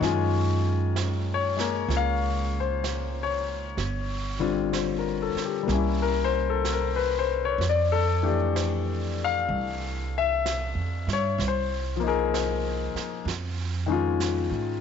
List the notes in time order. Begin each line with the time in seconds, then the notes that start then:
Already playing: C#5
0.00 F#2 D#3 G#3 C#4, brush sweep, snare
0.04 F4
0.96 brush sweep, snare, hi-hat pedal
1.34 C#5
1.57 G#3 A#3, snare
1.88 C#2, brush sweep, snare
1.97 F5
2.60 C5
2.84 brush sweep, snare, hi-hat pedal
3.23 C#5
3.77 G1, brush sweep, snare
4.39 D3 G3 C4 F4
4.73 C5, brush sweep, snare, hi-hat pedal
4.98 A#4
5.22 A4
5.35 muted upright bass stroke, snare
5.45 G4
5.63 G3 A#3
5.68 C2 C#4, brush sweep, snare
5.73 E4
6.02 A#4
6.24 C5
6.50 A4
6.65 brush sweep, snare, hi-hat pedal
6.73 A#4
6.96 B4
7.19 C5
7.45 C#5
7.58 F2, brush sweep, snare
7.69 D5
7.92 A4
8.23 E3 A3 D4 G4
8.56 brush sweep, snare, hi-hat pedal
9.24 F5
9.49 C2, brush sweep
10.18 E5
10.46 brush sweep, snare, hi-hat pedal
10.75 F2
11.07 G2, snare
11.13 C#5
11.38 C2, brush sweep, snare
11.48 C5
11.96 F3 A#3
12.03 D#4
12.07 G#4 A#4
12.34 brush sweep, snare, hi-hat pedal
12.94 muted upright bass stroke, snare
13.25 F2, brush sweep, snare
13.86 D#3 G#3 C#4
13.92 F4
14.20 brush sweep, snare, hi-hat pedal
14.51 G#2